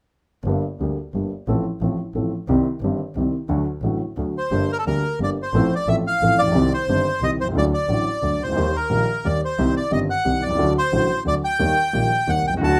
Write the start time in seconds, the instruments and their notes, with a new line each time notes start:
0.44 double bass G1, upright piano G1 G2 D3 G3 A#3 G4
0.80 double bass D2, upright piano D2 D3 G3 A#3 G4
1.14 double bass G1, upright piano G1 G2 D3 G3 A#3 G4
1.48 double bass A1, upright piano A1 A2 F3 A3 C4 A4
1.81 double bass A1, upright piano A1 A2 F3 A3 C4 A4
2.14 double bass A1, upright piano A1 A2 F3 A3 C4 A4
2.48 double bass C2, upright piano C2 C3 D#3 G3 C4 G4
2.81 double bass G1, upright piano G1 G2 D#3 G3 C4 G4
3.15 double bass C2, upright piano C2 C3 D#3 G3 C4 G4
3.49 double bass D2, upright piano D2 D3 F#3 A3 F#4
3.82 double bass A1, upright piano A1 A2 D3 F#3 A3 F#4
4.17 double bass D2, upright piano D2 D3 F#3 A3 F#4
4.38 bandoneon C5
4.51 double bass G1, upright piano G1 G2 D3 G3 A#3 G4
4.72 bandoneon A#4
4.79 bandoneon A4
4.86 double bass D2, upright piano D2 D3 G3 A#3 G4, bandoneon A#4
5.20 double bass G1, upright piano G1 G2 D3 G3 A#3 G4, bandoneon D5
5.42 bandoneon C5
5.53 double bass A1, upright piano A1 A2 F3 A3 C4 A4
5.75 bandoneon D5
5.87 double bass A1, upright piano A1 A2 F3 A3 C4 A4, bandoneon E5
6.07 bandoneon F5
6.20 double bass A1, upright piano A1 A2 F3 A3 C4 A4
6.36 double bass A#1, bandoneon D5
6.42 upright piano A1
6.47 upright piano A#1
6.51 upright piano B1 C2 C3 D#3 G3 G4, double bass C2
6.55 upright piano C4
6.74 bandoneon C5
6.87 double bass G1, upright piano G1 G2 D#3 G3 C4 G4
7.20 double bass C2, upright piano C2 C3 D#3 G3 C4 G4, bandoneon D#5
7.36 double bass C2
7.41 upright piano B1, bandoneon C5
7.48 upright piano C2 C#2
7.53 double bass D2, upright piano D2 D3 F#3 A3 F#4
7.58 bandoneon D5
7.74 bandoneon D5
7.87 double bass A1, upright piano A1 A2 D3 F#3 A3 F#4
8.22 double bass D2, upright piano D2 D3 F#3 A3 F#4
8.40 double bass C#2, bandoneon C5
8.44 upright piano C2 C#2
8.52 upright piano D2 D#3
8.56 upright piano D#2 G3 A#3 G4, double bass D#2
8.76 bandoneon A#4
8.89 upright piano A#1 A#2 D#3 G3 A#3 G4, double bass A#1
9.24 double bass D#2, upright piano D#2 D#3 G3 A#3 G4, bandoneon D5
9.45 bandoneon C5
9.59 upright piano C2 C3 D#3 G3 C4 G4, double bass C2
9.77 bandoneon D5
9.91 upright piano G1 G2 D#3 G3 C4 G4, double bass G1, bandoneon D#5
10.10 bandoneon F#5
10.24 upright piano C2 C3 D#3 G3 C4 G4, double bass C2
10.42 double bass C2, bandoneon D5
10.46 upright piano B1 C2
10.55 upright piano C#2 D2 D3 F#3 A3, double bass D2
10.59 upright piano F#4
10.78 bandoneon C5
10.92 double bass A1, upright piano A1 A2 D3 F#3 A3 F#4
11.25 upright piano D2 D3 F#3 A3 F#4, double bass D2, bandoneon D5
11.45 bandoneon G5
11.59 upright piano D#2 D#3 G3 A#3 G4, double bass D#2
11.93 upright piano A#1 A#2 D#3 G3 A#3 G4, double bass A#1
12.27 upright piano D#2 D#3 G3 A#3 G4, double bass D#2, bandoneon F#5
12.44 double bass C2, bandoneon G5
12.49 upright piano B1
12.53 upright piano C2 C#2
12.61 double bass D2, upright piano D2 D3 F#3 A3 F#4, cello F#4, bandoneon A5